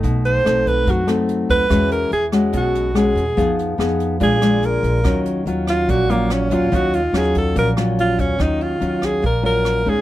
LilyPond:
<<
  \new Staff \with { instrumentName = "Alto saxophone" } { \time 4/4 \key ees \minor \tempo 4 = 144 r8 c''4 b'8 fis'8 r4 b'8~ | b'8 bes'8 gis'8 r8 fis'4 gis'4~ | gis'8 r4. aes'4 bes'4~ | bes'8 r4 f'8 ges'8 bes8 des'8 f'8 |
ges'8 f'8 aes'8 a'8 bes'8 r8 f'8 des'8 | ees'8 f'4 aes'8 bes'8 bes'4 aes'8 | }
  \new Staff \with { instrumentName = "Nylon-string guitar" } { \time 4/4 \key ees \minor << { <a ees'>4 <a c' dis'>4. <a c' dis'>4. | <gis cis' fis'>4 r8 <gis cis' fis'>4. <gis cis' fis'>8 r8 | <ces' ees' aes'>4 <ces' ees' aes'>4 <aes d' f'>8 <aes d' f'>4. | <ges des' f'>4 <ges des' f'>4. <ges des' f'>4 <ges des' f'>8 |
<ges des' f'>8 r8 <ges des' f'>4. <ges des' f'>4. | <ges des' f'>4 <ges des' f'>4 r8 <ges des' f'>4 <aes des' ees'>8 | } \\ { b,2 fis2 | e2 b,2 | f2 bes,2 | ees2 bes,2 |
ees2 bes,2 | ees2 bes,2 | } >> }
  \new Staff \with { instrumentName = "Upright bass" } { \clef bass \time 4/4 \key ees \minor b,,4 b,,4 fis,4. dis,8 | e,4 e,4 b,,4. e,8 | f,4 f,4 bes,,4. bes,,8 | ees,4 ees,4 bes,,4. ees,8 |
ees,4 ees,4 bes,,4. ees,8 | ees,4 ees,4 bes,,4. ees,8 | }
  \new DrumStaff \with { instrumentName = "Drums" } \drummode { \time 4/4 <hh bd>8 hh8 <hh ss>8 <hh bd>8 <hh bd>8 <hh ss>8 hh8 <hh bd>8 | <hh bd ss>8 hh8 hh8 <hh ss>8 <hh bd>8 hh8 <hh ss>8 hh8 | <hh bd>8 hh8 <hh ss>8 hh8 <hh bd>8 <hh ss>8 hh8 hh8 | <hh bd ss>8 hh8 hh8 <hh ss>8 <hh bd>8 hh8 <hh ss>8 hh8 |
<hh bd>8 hh8 <hh ss>8 <hh bd>8 <hh bd>8 <hh ss>8 hh8 <hh bd>8 | <hh bd ss>8 hh8 hh8 <hh bd ss>8 <hh bd>8 hh8 <hh ss>8 <hh bd>8 | }
>>